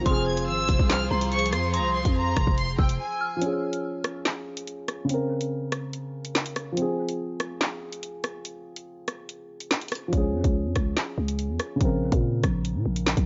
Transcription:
0.01 F3
0.06 F1 F3 C4 F4 G#4 C5 C6 F6, kick, closed hi-hat
0.10 G#4
0.27 G#6
0.37 closed hi-hat
0.48 G#1 E6
0.69 F1, kick, closed hi-hat
0.79 C2, kick
0.90 F6, snare, clap, closed hi-hat
1.11 C2 A#5 C6
1.21 closed hi-hat
1.32 C#6, closed hi-hat
1.39 closed hi-hat
1.46 closed hi-hat
1.53 F2 C6, cross-stick, closed hi-hat
1.74 A#5 C6, closed hi-hat
1.79 C2
1.95 C6
2.05 F2, kick, closed hi-hat
2.16 A#5
2.36 F1, kick, cross-stick, closed hi-hat
2.47 F1, kick
2.58 C6, closed hi-hat
2.78 F1 G5 E6, kick
2.89 closed hi-hat
3.00 G#5
3.21 F6
3.37 F3
3.41 C#4, closed hi-hat
3.46 G#4
3.73 closed hi-hat
4.04 cross-stick, closed hi-hat
4.25 snare, clap, closed hi-hat
4.57 closed hi-hat
4.67 closed hi-hat
4.88 cross-stick, closed hi-hat
5.05 C#3
5.09 C4, closed hi-hat
5.14 A#4
5.41 closed hi-hat
5.72 cross-stick, closed hi-hat
5.93 closed hi-hat
6.25 closed hi-hat
6.35 snare, clap
6.46 closed hi-hat
6.56 cross-stick, closed hi-hat
6.72 F3
6.77 C4, closed hi-hat
6.82 G#4
7.09 closed hi-hat
7.40 cross-stick, closed hi-hat
7.61 snare, clap, closed hi-hat
7.93 closed hi-hat
8.03 closed hi-hat
8.24 cross-stick, closed hi-hat
8.45 closed hi-hat
8.76 closed hi-hat
9.08 cross-stick, closed hi-hat
9.29 closed hi-hat
9.60 closed hi-hat
9.71 snare, clap
9.81 closed hi-hat
9.88 cross-stick, closed hi-hat, open hi-hat
9.95 closed hi-hat
10.08 F3
10.13 C#2 C#4, kick, closed hi-hat
10.17 G#4
10.34 F2
10.44 C#2, kick, closed hi-hat
10.65 F2
10.76 C#2, kick, cross-stick, closed hi-hat
10.97 snare, clap, closed hi-hat
11.18 C#2
11.28 closed hi-hat
11.39 closed hi-hat
11.49 E2
11.60 cross-stick, closed hi-hat
11.76 C#3
11.80 A#1 C4, kick, closed hi-hat
11.85 A#4
12.12 A#2, kick, closed hi-hat
12.44 A#1, kick, cross-stick, closed hi-hat
12.65 closed hi-hat
12.75 A#2
12.86 A#1
12.96 closed hi-hat
13.07 snare, clap
13.17 A#1, kick, closed hi-hat

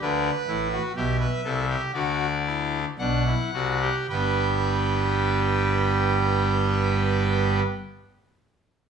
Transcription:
0.01 D2 D3 D4 B4
0.48 A1 A2 E4
0.72 F#4
0.96 B1 B2 G4 E5
1.20 B4
1.44 C2 C3 A4
1.70 G4
1.94 D2 D3 F#4 D5
2.46 E4
2.98 B1 B2 D4 F#5
3.27 E4
3.53 C2 C3 F#4
3.81 G4
4.09 G1 G2 G3 B3 B4 G5

